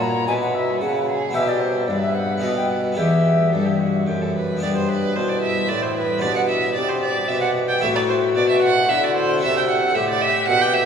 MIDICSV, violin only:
0, 0, Header, 1, 2, 480
1, 0, Start_track
1, 0, Key_signature, 1, "minor"
1, 0, Tempo, 541028
1, 1193, Time_signature, 3, 2, 24, 8
1, 4094, Key_signature, 1, "major"
1, 5049, Tempo, 531915
1, 9708, End_track
2, 0, Start_track
2, 0, Title_t, "Violin"
2, 0, Program_c, 0, 40
2, 0, Note_on_c, 0, 66, 78
2, 210, Note_off_c, 0, 66, 0
2, 244, Note_on_c, 0, 64, 66
2, 714, Note_on_c, 0, 66, 67
2, 727, Note_off_c, 0, 64, 0
2, 949, Note_off_c, 0, 66, 0
2, 955, Note_on_c, 0, 68, 68
2, 1188, Note_on_c, 0, 67, 70
2, 1201, Note_off_c, 0, 68, 0
2, 1660, Note_off_c, 0, 67, 0
2, 1665, Note_on_c, 0, 71, 73
2, 2630, Note_on_c, 0, 67, 55
2, 2644, Note_off_c, 0, 71, 0
2, 3073, Note_off_c, 0, 67, 0
2, 3117, Note_on_c, 0, 69, 67
2, 3247, Note_on_c, 0, 67, 52
2, 3260, Note_off_c, 0, 69, 0
2, 3365, Note_on_c, 0, 66, 58
2, 3378, Note_off_c, 0, 67, 0
2, 3610, Note_on_c, 0, 67, 56
2, 3623, Note_off_c, 0, 66, 0
2, 3741, Note_on_c, 0, 69, 53
2, 3754, Note_off_c, 0, 67, 0
2, 3858, Note_off_c, 0, 69, 0
2, 3862, Note_on_c, 0, 71, 60
2, 4094, Note_off_c, 0, 71, 0
2, 4103, Note_on_c, 0, 74, 88
2, 4149, Note_off_c, 0, 74, 0
2, 4220, Note_on_c, 0, 72, 71
2, 4330, Note_on_c, 0, 71, 82
2, 4344, Note_off_c, 0, 72, 0
2, 4575, Note_on_c, 0, 72, 78
2, 4588, Note_off_c, 0, 71, 0
2, 4692, Note_on_c, 0, 74, 77
2, 4705, Note_off_c, 0, 72, 0
2, 4799, Note_off_c, 0, 74, 0
2, 4805, Note_on_c, 0, 76, 82
2, 5046, Note_on_c, 0, 74, 86
2, 5060, Note_off_c, 0, 76, 0
2, 5166, Note_on_c, 0, 72, 74
2, 5179, Note_off_c, 0, 74, 0
2, 5283, Note_off_c, 0, 72, 0
2, 5288, Note_on_c, 0, 71, 86
2, 5520, Note_on_c, 0, 74, 97
2, 5533, Note_off_c, 0, 71, 0
2, 5644, Note_off_c, 0, 74, 0
2, 5650, Note_on_c, 0, 78, 78
2, 5699, Note_off_c, 0, 78, 0
2, 5763, Note_on_c, 0, 76, 76
2, 5993, Note_off_c, 0, 76, 0
2, 5998, Note_on_c, 0, 74, 86
2, 6128, Note_on_c, 0, 72, 79
2, 6142, Note_off_c, 0, 74, 0
2, 6246, Note_off_c, 0, 72, 0
2, 6251, Note_on_c, 0, 74, 83
2, 6482, Note_on_c, 0, 76, 92
2, 6495, Note_off_c, 0, 74, 0
2, 6593, Note_off_c, 0, 76, 0
2, 6599, Note_on_c, 0, 78, 86
2, 6671, Note_off_c, 0, 78, 0
2, 6848, Note_on_c, 0, 79, 87
2, 6963, Note_off_c, 0, 79, 0
2, 6968, Note_on_c, 0, 76, 105
2, 7018, Note_off_c, 0, 76, 0
2, 7094, Note_on_c, 0, 74, 82
2, 7142, Note_off_c, 0, 74, 0
2, 7210, Note_on_c, 0, 72, 90
2, 7282, Note_off_c, 0, 72, 0
2, 7455, Note_on_c, 0, 74, 99
2, 7572, Note_off_c, 0, 74, 0
2, 7576, Note_on_c, 0, 76, 88
2, 7686, Note_off_c, 0, 76, 0
2, 7691, Note_on_c, 0, 78, 102
2, 7930, Note_on_c, 0, 76, 101
2, 7944, Note_off_c, 0, 78, 0
2, 8069, Note_on_c, 0, 74, 86
2, 8083, Note_off_c, 0, 76, 0
2, 8173, Note_off_c, 0, 74, 0
2, 8178, Note_on_c, 0, 72, 101
2, 8412, Note_off_c, 0, 72, 0
2, 8420, Note_on_c, 0, 76, 106
2, 8535, Note_off_c, 0, 76, 0
2, 8551, Note_on_c, 0, 79, 90
2, 8595, Note_off_c, 0, 79, 0
2, 8655, Note_on_c, 0, 78, 88
2, 8889, Note_on_c, 0, 76, 98
2, 8903, Note_off_c, 0, 78, 0
2, 9011, Note_off_c, 0, 76, 0
2, 9024, Note_on_c, 0, 74, 98
2, 9131, Note_on_c, 0, 76, 101
2, 9144, Note_off_c, 0, 74, 0
2, 9362, Note_off_c, 0, 76, 0
2, 9367, Note_on_c, 0, 78, 109
2, 9492, Note_on_c, 0, 79, 97
2, 9505, Note_off_c, 0, 78, 0
2, 9604, Note_on_c, 0, 76, 105
2, 9618, Note_off_c, 0, 79, 0
2, 9708, Note_off_c, 0, 76, 0
2, 9708, End_track
0, 0, End_of_file